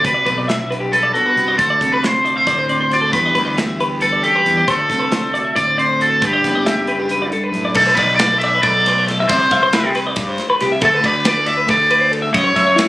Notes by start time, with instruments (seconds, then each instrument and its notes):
0.03 fingered electric bass C2, clean electric guitar C3 F#4 B4, overdriven electric guitar B4, kick, closed hi-hat
0.14 clean electric guitar D5
0.26 fingered electric bass B1, clean electric guitar B3 B4, kick, closed hi-hat
0.38 clean electric guitar D5
0.48 clean electric guitar B3 E5, snare, closed hi-hat
0.59 clean electric guitar D4
0.71 clean electric guitar F#4 B4, closed hi-hat
0.80 clean electric guitar G4
0.91 clean electric guitar G2 B4, overdriven electric guitar A4, closed hi-hat
1.03 clean electric guitar D5
1.14 clean electric guitar B3 A4, overdriven electric guitar F#4, closed hi-hat
1.26 clean electric guitar B4
1.36 fingered electric bass C2, clean electric guitar B3, closed hi-hat
1.47 clean electric guitar D4 D5
1.58 clean electric guitar D2 F#4 C5, fingered electric bass D2, overdriven electric guitar A4, kick, closed hi-hat
1.70 clean electric guitar D5
1.81 fingered electric bass C2, clean electric guitar C4 A4, kick, closed hi-hat
1.92 overdriven electric guitar B4, clean electric guitar B4
2.03 clean electric guitar D4 C5, overdriven electric guitar C5, snare, closed hi-hat
2.25 clean electric guitar F#4 D5, closed hi-hat
2.36 overdriven electric guitar C5, clean electric guitar E5
2.46 fingered electric bass D2, clean electric guitar A2 D5, kick, snare, closed hi-hat
2.59 clean electric guitar C5
2.69 clean electric guitar C4 D5, closed hi-hat
2.81 clean electric guitar C5
2.90 clean electric guitar F#4, overdriven electric guitar D5, snare, closed hi-hat
3.02 clean electric guitar A4
3.12 clean electric guitar E2 E3 G3 D4 G4 B4, fingered electric bass E2, overdriven electric guitar B4, kick, closed hi-hat
3.26 clean electric guitar D5
3.35 fingered electric bass D2, clean electric guitar G3 B4, kick, closed hi-hat
3.45 clean electric guitar D5
3.57 clean electric guitar B3 E5, snare, closed hi-hat
3.68 clean electric guitar D4
3.79 clean electric guitar G4 B4, closed hi-hat
3.92 clean electric guitar G4
4.01 clean electric guitar G2 B4, overdriven electric guitar A4, closed hi-hat
4.13 clean electric guitar D5
4.23 clean electric guitar F#2 A4, overdriven electric guitar G4, closed hi-hat
4.35 clean electric guitar B4
4.45 fingered electric bass E2, clean electric guitar E2, closed hi-hat
4.57 clean electric guitar D5
4.67 clean electric guitar D2 F#4 C5, fingered electric bass D2, overdriven electric guitar A4, kick, closed hi-hat
4.78 clean electric guitar D5
4.89 fingered electric bass C2, clean electric guitar C4 A4, kick, snare, closed hi-hat
4.99 clean electric guitar B4
5.12 clean electric guitar D4 C5, snare, closed hi-hat
5.34 clean electric guitar F#4 D5, closed hi-hat
5.45 clean electric guitar E5
5.55 fingered electric bass D2, clean electric guitar A2 D5, overdriven electric guitar D5, kick, closed hi-hat
5.67 clean electric guitar C5
5.78 clean electric guitar C4 D5, overdriven electric guitar C5, closed hi-hat
5.89 clean electric guitar C5
6.00 clean electric guitar F#4, overdriven electric guitar A4, closed hi-hat
6.10 clean electric guitar A4
6.22 fingered electric bass G1, clean electric guitar G2 D4 B4, kick, closed hi-hat
6.27 overdriven electric guitar G4
6.33 clean electric guitar D5
6.44 fingered electric bass F#1, clean electric guitar B3 B4, kick, snare, closed hi-hat
6.55 clean electric guitar D5
6.66 clean electric guitar D4 E5, snare, closed hi-hat
6.87 clean electric guitar B3 B4, closed hi-hat
6.99 clean electric guitar D4 G4
7.09 clean electric guitar F#2 B4, closed hi-hat
7.22 clean electric guitar D5
7.32 clean electric guitar G2 A4, closed hi-hat
7.44 clean electric guitar B4
7.52 fingered electric bass F#2, clean electric guitar A2, closed hi-hat
7.65 clean electric guitar D5
7.74 fingered electric bass B1, clean electric guitar A4, overdriven electric guitar A4, kick, crash
7.87 clean electric guitar B4
7.95 fingered electric bass B1, overdriven electric guitar B4, clean electric guitar D5, kick, ride
8.16 overdriven electric guitar D5, snare, ride
8.21 clean electric guitar B4
8.32 clean electric guitar A4
8.39 overdriven electric guitar E5, ride
8.44 clean electric guitar D5
8.55 clean electric guitar B4
8.63 fingered electric bass B1, clean electric guitar A4, overdriven electric guitar D5, kick, ride
8.86 clean electric guitar B4, snare, ride
8.98 clean electric guitar C5
9.08 clean electric guitar A4, snare, ride
9.20 clean electric guitar E5
9.29 fingered electric bass C2, overdriven electric guitar C5, clean electric guitar D5, kick, ride
9.42 clean electric guitar C5
9.51 fingered electric bass C2, clean electric guitar E5, kick, ride
9.63 clean electric guitar C5
9.73 clean electric guitar E4, snare, ride
9.85 clean electric guitar G4
9.95 clean electric guitar B4, snare, ride
10.07 clean electric guitar D5
10.16 fingered electric bass G2, kick, snare, ride
10.29 clean electric guitar C5
10.38 snare, ride
10.50 clean electric guitar B4
10.60 fingered electric bass C2, clean electric guitar G4, snare, ride
10.72 clean electric guitar E5
10.81 fingered electric bass D2, clean electric guitar A4, overdriven electric guitar A4, kick, ride
10.94 clean electric guitar B4
11.03 fingered electric bass D2, overdriven electric guitar B4, clean electric guitar D5, kick, ride
11.25 clean electric guitar B4, overdriven electric guitar D5, snare, ride
11.37 clean electric guitar A4
11.46 clean electric guitar D5, overdriven electric guitar E5, snare, ride
11.57 clean electric guitar B4
11.68 fingered electric bass D2, clean electric guitar A4, overdriven electric guitar D5, kick, ride
11.91 clean electric guitar B4, ride
12.00 clean electric guitar C5
12.12 clean electric guitar A4, ride
12.22 clean electric guitar E5
12.33 fingered electric bass F#2, overdriven electric guitar C#5, clean electric guitar D#5, kick, ride
12.44 clean electric guitar C#5
12.56 fingered electric bass F#2, clean electric guitar E5, kick, snare, ride
12.67 clean electric guitar C#5
12.76 clean electric guitar E4, snare, ride